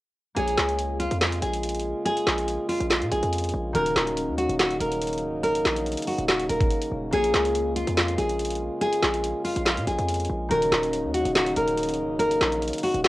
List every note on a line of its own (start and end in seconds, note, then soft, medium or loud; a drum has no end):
0.35 0.57 A#1 loud
0.35 10.47 C#3 medium
0.35 3.71 G#3 medium
0.35 3.70 A#3 medium
0.35 10.47 A#3 medium
0.35 3.71 F4 loud
0.35 3.71 G#4 medium
0.35 0.96 G#4 loud
0.35 3.71 C#5 medium
0.35 closed hi-hat medium
0.48 closed hi-hat medium
0.58 1.09 C#2 loud
0.58 snare loud
0.58 clap medium
0.58 closed hi-hat medium
0.69 closed hi-hat medium
0.79 closed hi-hat medium
1.00 1.16 F4 medium
1.00 closed hi-hat medium
1.11 1.41 F2 loud
1.11 closed hi-hat medium
1.21 1.38 F4 medium
1.21 snare loud
1.21 clap medium
1.21 closed hi-hat medium
1.32 closed hi-hat medium
1.42 1.94 A#1 loud
1.42 2.02 G#4 medium
1.42 closed hi-hat medium
1.54 closed hi-hat medium
1.63 closed hi-hat medium
1.69 closed hi-hat medium
1.75 closed hi-hat medium
1.80 closed hi-hat soft
2.05 2.65 G#4 loud
2.05 closed hi-hat medium
2.17 closed hi-hat medium
2.27 2.58 A#1 loud
2.27 snare loud
2.27 clap medium
2.27 closed hi-hat medium
2.38 closed hi-hat medium
2.48 closed hi-hat medium
2.69 2.85 F4 medium
2.69 open hi-hat medium
2.80 3.03 A#1 loud
2.80 closed hi-hat medium
2.90 3.06 F4 medium
2.90 snare loud
2.90 clap medium
2.90 closed hi-hat medium
3.01 3.11 A#2 loud
3.01 closed hi-hat medium
3.11 3.22 A#1 loud
3.11 3.71 G#4 medium
3.11 closed hi-hat medium
3.23 3.52 F2 loud
3.23 closed hi-hat medium
3.33 closed hi-hat medium
3.38 closed hi-hat medium
3.44 closed hi-hat medium
3.49 closed hi-hat medium
3.54 3.74 A#1 loud
3.73 3.95 D#1 loud
3.73 7.18 D#3 medium
3.73 7.09 F#3 medium
3.73 7.09 C#4 medium
3.73 7.09 D#4 medium
3.73 7.09 F#4 medium
3.73 4.34 A#4 loud
3.73 closed hi-hat medium
3.86 closed hi-hat medium
3.96 4.30 D#1 loud
3.96 snare loud
3.96 clap medium
3.96 closed hi-hat medium
4.07 closed hi-hat medium
4.17 closed hi-hat medium
4.28 4.48 D#2 loud
4.38 4.54 F#4 medium
4.38 closed hi-hat medium
4.49 4.79 D#1 loud
4.49 closed hi-hat medium
4.59 4.76 F#4 loud
4.59 snare loud
4.59 clap loud
4.59 closed hi-hat medium
4.70 closed hi-hat medium
4.80 5.24 D#1 loud
4.80 5.40 A#4 medium
4.80 closed hi-hat medium
4.92 closed hi-hat medium
5.01 closed hi-hat medium
5.07 closed hi-hat medium
5.13 closed hi-hat medium
5.18 closed hi-hat soft
5.22 5.63 C#1 loud
5.43 6.03 A#4 loud
5.43 closed hi-hat medium
5.55 closed hi-hat medium
5.65 5.96 A#1 loud
5.65 snare loud
5.65 clap medium
5.65 closed hi-hat medium
5.76 closed hi-hat medium
5.86 closed hi-hat medium
5.92 closed hi-hat medium
5.97 closed hi-hat medium
6.02 closed hi-hat medium
6.07 6.23 F#4 medium
6.07 open hi-hat medium
6.18 6.48 D#1 loud
6.18 closed hi-hat medium
6.28 6.44 F#4 medium
6.28 snare loud
6.28 clap medium
6.28 closed hi-hat medium
6.39 closed hi-hat medium
6.49 6.70 D#1 loud
6.49 7.09 A#4 medium
6.49 closed hi-hat medium
6.61 kick loud
6.61 closed hi-hat medium
6.71 closed hi-hat medium
6.82 closed hi-hat medium
6.92 7.12 D#1 loud
7.11 7.33 A#1 loud
7.11 10.47 G#3 medium
7.11 10.46 A#3 medium
7.11 10.47 F4 medium
7.11 10.47 G#4 medium
7.11 7.72 G#4 loud
7.11 10.47 C#5 medium
7.11 closed hi-hat medium
7.24 closed hi-hat medium
7.34 7.85 C#2 loud
7.34 snare loud
7.34 clap medium
7.34 closed hi-hat medium
7.45 closed hi-hat medium
7.55 closed hi-hat medium
7.76 7.92 F4 medium
7.76 closed hi-hat medium
7.87 8.17 F2 loud
7.87 closed hi-hat medium
7.97 8.14 F4 medium
7.97 snare loud
7.97 clap medium
7.97 closed hi-hat medium
8.08 closed hi-hat medium
8.18 8.70 A#1 loud
8.18 8.78 G#4 medium
8.18 closed hi-hat medium
8.29 closed hi-hat medium
8.39 closed hi-hat medium
8.45 closed hi-hat medium
8.51 closed hi-hat medium
8.56 closed hi-hat soft
8.81 9.41 G#4 loud
8.81 closed hi-hat medium
8.93 closed hi-hat medium
9.03 9.34 A#1 loud
9.03 snare loud
9.03 clap medium
9.03 closed hi-hat medium
9.14 closed hi-hat medium
9.24 closed hi-hat medium
9.45 9.61 F4 medium
9.45 open hi-hat medium
9.56 9.79 A#1 loud
9.56 closed hi-hat medium
9.66 9.82 F4 medium
9.66 snare loud
9.66 clap medium
9.66 closed hi-hat medium
9.77 9.87 A#2 loud
9.77 closed hi-hat medium
9.87 9.98 A#1 loud
9.87 10.47 G#4 medium
9.87 closed hi-hat medium
9.99 10.28 F2 loud
9.99 closed hi-hat medium
10.09 closed hi-hat medium
10.14 closed hi-hat medium
10.20 closed hi-hat medium
10.25 closed hi-hat soft
10.30 10.50 A#1 loud
10.49 10.71 D#1 loud
10.49 13.08 C#3 medium
10.49 13.08 D#3 medium
10.49 13.08 F#3 medium
10.49 13.08 A#3 medium
10.49 13.08 C#4 medium
10.49 13.08 D#4 loud
10.49 13.08 F#4 medium
10.49 11.10 A#4 loud
10.49 closed hi-hat medium
10.62 closed hi-hat medium
10.72 11.06 D#1 loud
10.72 snare loud
10.72 clap medium
10.72 closed hi-hat medium
10.83 closed hi-hat medium
10.93 closed hi-hat medium
11.04 11.24 D#2 loud
11.14 11.30 F#4 medium
11.14 closed hi-hat medium
11.25 11.55 D#1 loud
11.25 closed hi-hat medium
11.35 11.52 F#4 loud
11.35 snare loud
11.35 clap loud
11.35 closed hi-hat medium
11.46 closed hi-hat medium
11.56 12.00 D#1 loud
11.56 12.16 A#4 medium
11.56 closed hi-hat medium
11.68 closed hi-hat medium
11.77 closed hi-hat medium
11.83 closed hi-hat medium
11.89 closed hi-hat medium
11.94 closed hi-hat medium
11.99 12.39 C#1 loud
12.19 12.79 A#4 loud
12.19 closed hi-hat medium
12.31 closed hi-hat medium
12.41 12.72 A#1 loud
12.41 snare loud
12.41 clap medium
12.41 closed hi-hat medium
12.52 closed hi-hat medium
12.62 closed hi-hat medium
12.68 closed hi-hat medium
12.73 closed hi-hat medium
12.78 closed hi-hat medium
12.83 13.00 F#4 medium
12.83 open hi-hat medium
12.94 13.04 D#1 loud
12.94 closed hi-hat medium
13.04 13.08 F#4 loud
13.04 snare loud
13.04 closed hi-hat medium